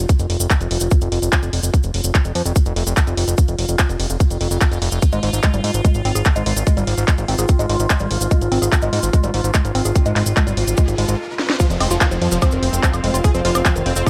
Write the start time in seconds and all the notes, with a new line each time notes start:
Already playing: F4
0.09 kick, closed hi-hat, cabasa
0.19 F1, closed hi-hat, cabasa
0.30 F1, open hi-hat
0.40 F1, closed hi-hat, cabasa
0.50 kick, clap, closed hi-hat, cabasa
0.61 F1, closed hi-hat, cabasa
0.71 F1, open hi-hat
0.80 F1, closed hi-hat, cabasa
0.91 kick, closed hi-hat, cabasa
1.01 F1, closed hi-hat, cabasa
1.12 F1, open hi-hat
1.22 F1, closed hi-hat, cabasa
1.32 kick, clap, closed hi-hat, cabasa
1.43 F1, closed hi-hat, cabasa
1.53 F1, open hi-hat
1.63 F1, closed hi-hat, cabasa
1.74 kick, closed hi-hat, cabasa
1.83 F1, closed hi-hat, cabasa
1.94 F1, open hi-hat
2.04 F1, closed hi-hat, cabasa
2.15 kick, clap, closed hi-hat, cabasa
2.25 F1, closed hi-hat, cabasa
2.35 F2, open hi-hat
2.46 F1, closed hi-hat, cabasa
2.56 kick, closed hi-hat, cabasa
2.66 F1, closed hi-hat, cabasa
2.76 F1, open hi-hat
2.87 F1, closed hi-hat, cabasa
2.97 kick, clap, closed hi-hat, cabasa
3.07 F1, closed hi-hat, cabasa
3.17 F1, open hi-hat
3.28 F1, closed hi-hat, cabasa
3.38 kick, closed hi-hat, cabasa
3.48 F1, closed hi-hat, cabasa
3.59 F1, open hi-hat
3.69 F1, closed hi-hat, cabasa
3.79 kick, clap, closed hi-hat, cabasa
3.89 F1, closed hi-hat, cabasa
4.00 F1, open hi-hat
4.10 F1, closed hi-hat, cabasa
4.20 kick, closed hi-hat, cabasa
4.30 F1, closed hi-hat, cabasa
4.41 F1, open hi-hat
4.51 F1, closed hi-hat, cabasa
4.61 kick, clap, closed hi-hat, cabasa
4.72 F1, closed hi-hat, cabasa
4.82 F1, open hi-hat
4.92 F1, closed hi-hat, cabasa
5.02 kick, closed hi-hat, cabasa
5.12 G#1 G#3, closed hi-hat, cabasa
5.23 G#1 G#3, open hi-hat
5.33 G#1, closed hi-hat, cabasa
5.43 G#3, kick, clap, closed hi-hat, cabasa
5.54 G#1 G3, closed hi-hat, cabasa
5.64 G#2, open hi-hat
5.74 G#1, closed hi-hat, cabasa
5.85 G#3, kick, closed hi-hat, cabasa
5.95 G#1, closed hi-hat, cabasa
6.05 G#1 C4, open hi-hat
6.15 G#1 G#4, closed hi-hat, cabasa
6.25 kick, clap, closed hi-hat, cabasa
6.36 G#1 G#3, closed hi-hat, cabasa
6.46 G#1 G#3, open hi-hat
6.56 G#1, closed hi-hat, cabasa
6.67 G#3, kick, closed hi-hat, cabasa
6.77 G#1 G3, closed hi-hat, cabasa
6.87 G#1, open hi-hat
6.98 G#1, closed hi-hat, cabasa
7.08 G#3, kick, clap, closed hi-hat, cabasa
7.18 G#1, closed hi-hat, cabasa
7.28 G#1 C4, open hi-hat
7.38 G#1 G#4, closed hi-hat, cabasa
7.48 kick, closed hi-hat, cabasa
7.59 G#1 G#3, closed hi-hat, cabasa
7.69 G#1 G#3, open hi-hat
7.80 G#1, closed hi-hat, cabasa
7.90 G#3, kick, clap, closed hi-hat, cabasa
7.99 G#1 G3, closed hi-hat, cabasa
8.11 G#1, open hi-hat
8.21 G#1, closed hi-hat, cabasa
8.31 G#3, kick, closed hi-hat, riser, cabasa
8.41 G#1, closed hi-hat, cabasa
8.52 G#1 C4, open hi-hat
8.62 G#1 G#4, closed hi-hat, cabasa
8.72 kick, clap, closed hi-hat, cabasa
8.82 G#1 G#3, closed hi-hat, cabasa
8.93 G#2 G#3, open hi-hat
9.03 G#1, closed hi-hat, cabasa
9.13 G#3, kick, closed hi-hat, cabasa
9.23 G#1 G3, closed hi-hat, cabasa
9.34 G#1, open hi-hat
9.44 G#1, closed hi-hat, cabasa
9.54 G#3, kick, clap, closed hi-hat, cabasa
9.65 G#1, closed hi-hat, cabasa
9.75 G#1 C4, open hi-hat
9.85 G#1 G#4, closed hi-hat, cabasa
9.96 kick, closed hi-hat, cabasa
10.06 G#1 G#3, closed hi-hat, cabasa
10.16 G#1 G#3, clap, open hi-hat
10.26 G#1, closed hi-hat, cabasa
10.37 G#3, kick, clap, closed hi-hat, cabasa
10.47 G#1 G3, closed hi-hat, cabasa
10.57 G#1, open hi-hat
10.67 G#1, closed hi-hat, cabasa
10.77 G#3, kick, closed hi-hat, cabasa
10.88 G#1, closed hi-hat, cabasa
10.98 G#1 G#3, open hi-hat
11.08 G#1 G#3, closed hi-hat, cabasa
11.39 snare
11.50 snare
11.60 F3 C4 F4, kick, closed hi-hat, downlifter, cabasa
11.70 F1 F3 F4, closed hi-hat, cabasa
11.77 F1 G#3 C4 F5, open hi-hat, high woodblock
11.91 F1 F3 F4 C5, closed hi-hat, cabasa
12.01 F3, kick, clap, closed hi-hat, cabasa
12.11 F1 F3, closed hi-hat, cabasa
12.22 F2 F3, open hi-hat
12.32 F1 F3, closed hi-hat, cabasa
12.42 F3 C4, kick, closed hi-hat, cabasa, high woodblock
12.51 F1 D#3, closed hi-hat, cabasa
12.63 F1, open hi-hat
12.73 F1, closed hi-hat, cabasa
12.83 F3, kick, clap, closed hi-hat, cabasa
12.93 F1, closed hi-hat, cabasa, high woodblock
13.04 F1 G#3, open hi-hat
13.14 F1 F4, closed hi-hat, cabasa
13.24 G#4, kick, closed hi-hat, cabasa
13.35 F1 F3 C4, closed hi-hat, cabasa
13.45 F1 F3 F4, open hi-hat
13.55 F1 C4, closed hi-hat, cabasa, high woodblock
13.65 F3 C4, kick, clap, closed hi-hat, cabasa
13.76 F1 D#3, closed hi-hat, cabasa
13.86 F1 C4, open hi-hat
13.96 F1 C4, closed hi-hat, cabasa
14.06 F3 D#4, kick, closed hi-hat, high woodblock